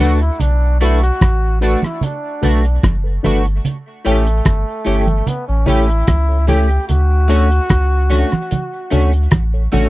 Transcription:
Already playing: D2
0.00 A3 D4 F#4 A4 B4, closed hi-hat
0.20 E4, closed hi-hat
0.40 B1 D4, closed hi-hat, low conga
0.81 A3 D4 E4 F#4 A4 B4, closed hi-hat
1.03 F#4, closed hi-hat
1.21 A1, kick, cross-stick, closed hi-hat
1.61 A3 D4 F#4 A4 B4, closed hi-hat
1.83 E4, cross-stick, closed hi-hat, high conga
2.01 D4, closed hi-hat, low conga
2.42 B1 A3 D4 F#4 A4 B4, closed hi-hat, low conga
2.65 closed hi-hat
2.83 F#1, kick, cross-stick, closed hi-hat, high conga
3.04 A4 B4
3.23 G1 A3 D4 F#4 A4 B4, closed hi-hat, high conga, low conga
3.45 closed hi-hat
3.65 closed hi-hat, low conga
4.05 A1 A3 C#4 E4 G4 A4 C#5, closed hi-hat
4.27 closed hi-hat
4.45 G1, kick, cross-stick, closed hi-hat
4.85 G1 A3 C#4 E4 G4 A4 C#5, closed hi-hat
5.07 closed hi-hat, high conga
5.27 B3, closed hi-hat, low conga
5.48 A1 C#4
5.66 A1 A3 C#4 E4 G4 A4 C#5, closed hi-hat, low conga
5.89 closed hi-hat
6.07 C#2, kick, cross-stick, closed hi-hat, high conga
6.29 A4 C#5
6.47 A3 C#4 E4 G4 A4 C#5, closed hi-hat, high conga, low conga
6.70 closed hi-hat
6.88 D2 F#4, closed hi-hat, low conga
7.28 A3 C#4 D4 F#4 A4 C#5, closed hi-hat
7.51 closed hi-hat
7.70 C#2, kick, cross-stick, closed hi-hat
8.10 A3 C#4 D4 F#4 A4 C#5, closed hi-hat, high conga
8.32 cross-stick, closed hi-hat, high conga
8.51 closed hi-hat, high conga, low conga
8.90 D2 A3 C#4 D4 F#4 A4 C#5, closed hi-hat, low conga
9.13 closed hi-hat
9.31 A1, kick, cross-stick, closed hi-hat, high conga
9.54 A4 C#5
9.72 A1 A3 C#4 D4 F#4 A4 C#5, closed hi-hat, high conga, low conga

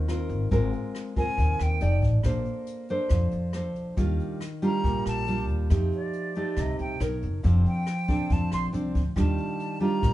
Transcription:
Already playing: D#2 D#3
0.08 C4 F4 A#4, cross-stick, closed hi-hat
0.29 G#1, closed hi-hat
0.51 G#1 G#3 C4 F4 A#4, kick, closed hi-hat
0.73 closed hi-hat
0.95 cross-stick, closed hi-hat
1.16 C4 F4 A#4 G#5, kick, closed hi-hat
1.37 D#2 D#3, kick, closed hi-hat
1.59 D#2 G5, cross-stick, closed hi-hat
1.81 F1 D#4 A4 D5, closed hi-hat
2.02 A1, kick, closed hi-hat
2.23 A#1 A#3 D4 A4 C5, kick, cross-stick, closed hi-hat
2.45 closed hi-hat
2.67 closed hi-hat
2.89 D4 A4 C5, closed hi-hat
3.09 F2 F3, kick, cross-stick, closed hi-hat
3.31 F2, closed hi-hat
3.53 D4 A4 C5, cross-stick, closed hi-hat
3.76 A#1, closed hi-hat
3.97 D#2 D#3 G3 D4 F4, kick, closed hi-hat
4.20 closed hi-hat
4.41 cross-stick, closed hi-hat
4.62 G3 D4 F4 A#5, closed hi-hat
4.84 A#1 A#2, kick, closed hi-hat
5.06 A#1 A5, cross-stick, closed hi-hat
5.27 G3 D4 F4, closed hi-hat
5.48 D#2, closed hi-hat
5.70 F2 F3 A3 D#4 G4, kick, cross-stick, closed hi-hat
5.92 D5, closed hi-hat
6.13 closed hi-hat
6.35 A3 D#4 G4, closed hi-hat
6.56 C2 C3, kick, cross-stick, closed hi-hat
6.60 D#5
6.79 C2 G5, closed hi-hat
7.00 B1 D#4 A#4 C#5, cross-stick, closed hi-hat
7.22 F#1, closed hi-hat
7.43 F1 F3 C4 D4 A4, kick, closed hi-hat
7.66 G5, closed hi-hat
7.86 cross-stick, closed hi-hat
8.08 C4 D4 A4, kick, closed hi-hat
8.30 F2 F3 A5, kick, closed hi-hat
8.51 A#1 C6, cross-stick, closed hi-hat
8.73 C2 C4 D4 A4, closed hi-hat
8.95 D2, kick, closed hi-hat
9.16 D#2 D#3 G3 D4 F4 A5, kick, cross-stick, closed hi-hat
9.38 closed hi-hat
9.60 closed hi-hat
9.80 G3 D4 F4 A#5, closed hi-hat
10.02 A#1 A#2, kick, cross-stick, closed hi-hat

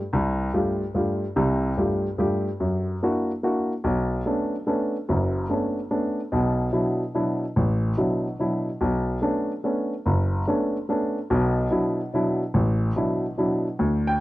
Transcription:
0.13 C2
0.54 G2 A3 F4 G4
0.94 G2 A3 F4 G4
1.36 C2 C3
1.77 G2 A3 F4 G4
2.18 G2 A3 F4 G4
2.60 F#2
3.03 A#3 D4 E4 F#4
3.43 A#3 D4 E4 F#4
3.84 B1
4.26 A3 B3 C#4 D4
4.67 A3 B3 C#4 D4
5.09 F#1 F#2
5.50 A3 B3 C#4 D4
5.91 A3 B3 C#4 D4
6.32 B1 B2
6.73 B2 F#3 D4 E4
7.15 B2 F#3 D4 E4
7.56 A1
7.98 B2 F#3 D4 E4
8.39 B2 F#3 D4 E4
8.81 B1
9.22 A3 B3 C#4 D4
9.64 A3 B3 C#4 D4
10.06 F#1
10.47 A3 B3 C#4 D4
10.89 A3 B3 C#4 D4
11.30 B1 B2
11.71 B2 F#3 D4 E4
12.14 B2 F#3 D4 E4
12.54 A1
12.96 B2 F#3 D4 E4
13.38 B2 F#3 D4 E4
13.79 D2
14.07 G5

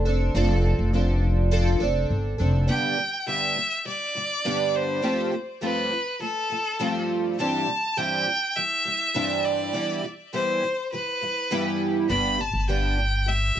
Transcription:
Already playing: F1
0.05 C4 D4 A4
0.35 F1 F3 C4 D4 A4
0.79 F1
0.93 F3 C4 D4 A4
1.51 F3 C4 D4 A4
1.80 F1 C4 D4 A4
2.10 G1
2.38 F1 C4 D4 A4
2.68 G2 D3 G3 B3 D4 G4 G5
2.97 G2 D3 G3
3.26 G2 D3 G3 B3 D4 G4 E5
3.56 G2 D3 G3
3.85 G2 D3 G3 D5
4.15 G2 D3 G3
4.45 G2 D3 G3 B3 D4 G4
4.75 C5
5.02 G2 F3 A3 C4 F4 G4
5.31 G2 F3 A3
5.61 G2 F3 A3 C4 F4 G4 B4
5.90 G2 F3 A3
6.19 G2 F3 A3 A4
6.49 G2 F3 A3
6.79 G2 F3 A3 C4 F4 G4
7.39 G2 E3 G3 C4 D4 G4 A5
7.67 G2 E3 G3
7.97 G2 E3 G3 C4 D4 G4 G5
8.26 G2 E3 G3
8.56 G2 E3 G3 E5
8.85 G2 E3 G3
9.14 G2 E3 G3 C4 D4 G4
9.45 D5
9.73 G2 E3 G3 B3 E4 G4
10.03 G2 E3 G3
10.33 G2 E3 G3 B3 E4 G4 C5
10.62 G2 E3 G3
10.92 G2 E3 G3 B4
11.21 G2 E3 G3
11.51 G2 E3 G3 B3 E4 G4
12.09 G1 G2 D3 G3 B3 D4 G4 B5
12.39 G2 D3 G3 A5
12.54 G1
12.68 G2 D3 G3 B3 D4 G4 G5
12.97 G2 D3 G3
13.26 G2 D3 G3 E5
13.55 G2 D3

